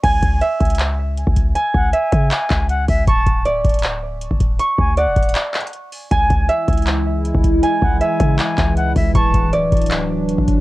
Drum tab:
CC |x-----------------------------------------------------------------------------------------------|------------------------------------------------------------------------------------------------|------------------------------------------------------------------------------------------------|------------------------------------------------------------------------------------------------|
HH |x-----------x-----------x-----------x--x--x--x--x-----------------------x-----------x-----------|x-----------------------x-----------x-----------x-----------x-----------x-----------o-----------|x-----------x-----------x-----------x--x--x--x--x-----------------------x-----------x-----------|x-----------------------x-----------x---x---x---x-----------x---x---x---x-----------o-----------|
CP |------------------------------------------------x-----------------------------------------------|------------------------------------------------x-----------x-----------------------------------|------------------------------------------------x-----------------------------------------------|------------------------------------------------x-----------x-----------------------------------|
BD |o-----------o-----------------------o-----------------------------------------o-----o-----------|------------o-----------------------o-----------------------o-----------------------o-----------|o-----------o-----------------------o-----------------------------------------o-----o-----------|------------o-----------------------o-----------------------------------------------------------|

CC |------------------------------------------------------------------------------------------------|------------------------------------------------------------------------------------------------|------------------------------------------------------------------------------------------------|
HH |x-----------x-----------x-----------x--x--x--x--x-----------------------x-----------x-----------|x-----------------------x-----------x-----------x-----------x-----------x-----------o-----------|x-----------x-----------x-----------x--x--x--x--x-----------------------x-----------x-----------|
CP |------------------------------------------------x-----------------------------------------------|------------------------------------------------x-----------x-----------------------------------|------------------------------------------------x-----------------------------------------------|
BD |o-----------o-----------------------o-----------------------------------------o-----o-----------|------------o-----------------------o-----------------------o-----------------------o-----------|o-----------o-----------------------o-----------------------------------------o-----o-----------|